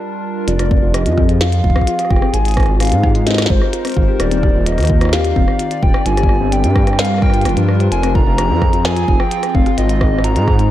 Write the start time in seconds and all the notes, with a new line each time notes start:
Already playing: G3 D4 F4 A#4
0.48 F1 F3 F4 D5, closed hi-hat
0.59 F4, cross-stick, closed hi-hat
0.71 C4, kick
0.83 F1 F4
0.94 G4 D#5, cross-stick, closed hi-hat
1.06 F2 F4, closed hi-hat
1.17 C4, kick, cross-stick
1.29 G#4, closed hi-hat
1.41 F4 F5, cross-stick, snare, closed hi-hat
1.52 F4, closed hi-hat
1.64 F1 F4, kick
1.70 kick
1.76 C4, kick, cross-stick
1.81 kick
1.87 F4, closed hi-hat
1.99 G4, cross-stick, closed hi-hat
2.05 cross-stick
2.10 F1 F4 G5, kick, cross-stick
2.16 cross-stick
2.22 C4, cross-stick
2.34 G#1 G#3 G#4 G#5, closed hi-hat
2.43 D#4 F4, closed hi-hat
2.48 closed hi-hat
2.51 closed hi-hat
2.54 F4, cross-stick, closed hi-hat
2.57 kick, cross-stick, closed hi-hat
2.63 cross-stick, closed hi-hat
2.66 G#1 F4, cross-stick, closed hi-hat
2.80 C4 F5, cross-stick, closed hi-hat
2.83 closed hi-hat
2.85 closed hi-hat
2.87 closed hi-hat
2.90 G#2 F4, closed hi-hat
2.92 closed hi-hat
3.03 G4, kick, cross-stick
3.15 F4 A#4 C5, closed hi-hat
3.27 C4 D#5, snare, closed hi-hat
3.31 snare
3.34 cross-stick, snare
3.38 G#4, snare, closed hi-hat
3.42 snare
3.46 G#1 F4, snare
3.50 C5, kick
3.62 F4, cross-stick
3.73 F4, closed hi-hat
3.85 C4, cross-stick, closed hi-hat
3.87 closed hi-hat
3.90 closed hi-hat
3.92 closed hi-hat
3.94 G#1 F4, kick, closed hi-hat
4.08 G4
4.20 D#1 D#3 F4 D5, cross-stick, closed hi-hat
4.31 C4, closed hi-hat
4.43 G4, kick, cross-stick
4.54 D#1 F4
4.66 F4 D#5, cross-stick, closed hi-hat
4.72 cross-stick
4.78 D#2 F4, cross-stick, closed hi-hat
4.80 closed hi-hat
4.83 cross-stick, closed hi-hat
4.85 closed hi-hat
4.87 C4, kick, closed hi-hat
5.01 F4 D5, cross-stick, closed hi-hat
5.05 cross-stick
5.09 G4 F5, cross-stick
5.13 cross-stick, snare, closed hi-hat
5.21 F4, cross-stick, closed hi-hat
5.36 D#1 C4, kick
5.48 G4, cross-stick
5.59 F4, closed hi-hat
5.71 F4, closed hi-hat
5.83 D#1 F4 G5, kick
5.94 C4, cross-stick
6.06 G1 G3 F4 G#5, closed hi-hat
6.17 G4, cross-stick, closed hi-hat
6.23 kick
6.29 F4 A#4, cross-stick
6.41 G1 C4 D4
6.52 G4 G5, closed hi-hat
6.64 G2 F4, closed hi-hat
6.75 F4, kick, cross-stick
6.83 F4, cross-stick, closed hi-hat
6.93 cross-stick
6.99 C4 F5, cross-stick, snare, closed hi-hat
7.05 cross-stick, closed hi-hat
7.10 F4, cross-stick
7.14 cross-stick
7.18 cross-stick
7.22 F5 G5, kick, cross-stick
7.26 cross-stick
7.30 F4, cross-stick, closed hi-hat
7.41 F1, cross-stick, closed hi-hat
7.45 F4, closed hi-hat
7.49 closed hi-hat
7.57 G2 F3, closed hi-hat
7.69 G4, cross-stick
7.80 C5, closed hi-hat
7.92 F1 F3 F4 G#5, closed hi-hat
8.03 C4, cross-stick, closed hi-hat
8.14 C4 F4 G#4 A#5, kick
8.27 F1 F4
8.38 F4, cross-stick, closed hi-hat
8.50 F2 C4
8.61 G#4, kick, cross-stick
8.73 F4, closed hi-hat
8.85 F4 G#5, cross-stick, snare
8.96 F4, closed hi-hat
9.08 F1 C4, kick
9.20 F4 G5, cross-stick
9.31 F4, closed hi-hat
9.43 F4, cross-stick, closed hi-hat
9.54 F1 C4 F5, kick
9.66 G#4, cross-stick, closed hi-hat
9.78 G#1 G#3 F4 D#5, closed hi-hat
9.85 D#4
9.89 F4, closed hi-hat
10.01 F4, kick, cross-stick
10.13 G#1 C4
10.19 cross-stick
10.24 F4 A#5, closed hi-hat
10.36 G#2 F4, closed hi-hat
10.48 kick, cross-stick
10.59 C4 A#4 C5, closed hi-hat